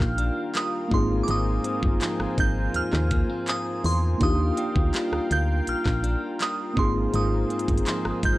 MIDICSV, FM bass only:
0, 0, Header, 1, 2, 480
1, 0, Start_track
1, 0, Tempo, 731707
1, 841, Time_signature, 4, 2, 24, 8
1, 5498, End_track
2, 0, Start_track
2, 0, Title_t, "FM bass"
2, 0, Program_c, 0, 39
2, 0, Note_on_c, 0, 34, 97
2, 200, Note_off_c, 0, 34, 0
2, 601, Note_on_c, 0, 32, 103
2, 801, Note_off_c, 0, 32, 0
2, 842, Note_on_c, 0, 32, 113
2, 1041, Note_off_c, 0, 32, 0
2, 1200, Note_on_c, 0, 31, 101
2, 1300, Note_off_c, 0, 31, 0
2, 1441, Note_on_c, 0, 32, 49
2, 1489, Note_off_c, 0, 32, 0
2, 1560, Note_on_c, 0, 32, 93
2, 1761, Note_off_c, 0, 32, 0
2, 1801, Note_on_c, 0, 39, 48
2, 1849, Note_off_c, 0, 39, 0
2, 1921, Note_on_c, 0, 39, 106
2, 2121, Note_off_c, 0, 39, 0
2, 2521, Note_on_c, 0, 40, 98
2, 2721, Note_off_c, 0, 40, 0
2, 2762, Note_on_c, 0, 39, 97
2, 2962, Note_off_c, 0, 39, 0
2, 3121, Note_on_c, 0, 38, 93
2, 3221, Note_off_c, 0, 38, 0
2, 3360, Note_on_c, 0, 38, 48
2, 3408, Note_off_c, 0, 38, 0
2, 3483, Note_on_c, 0, 38, 97
2, 3682, Note_off_c, 0, 38, 0
2, 3725, Note_on_c, 0, 34, 46
2, 3772, Note_off_c, 0, 34, 0
2, 3842, Note_on_c, 0, 34, 100
2, 4042, Note_off_c, 0, 34, 0
2, 4441, Note_on_c, 0, 32, 96
2, 4641, Note_off_c, 0, 32, 0
2, 4681, Note_on_c, 0, 32, 110
2, 4881, Note_off_c, 0, 32, 0
2, 5040, Note_on_c, 0, 31, 101
2, 5140, Note_off_c, 0, 31, 0
2, 5283, Note_on_c, 0, 32, 48
2, 5330, Note_off_c, 0, 32, 0
2, 5401, Note_on_c, 0, 32, 92
2, 5498, Note_off_c, 0, 32, 0
2, 5498, End_track
0, 0, End_of_file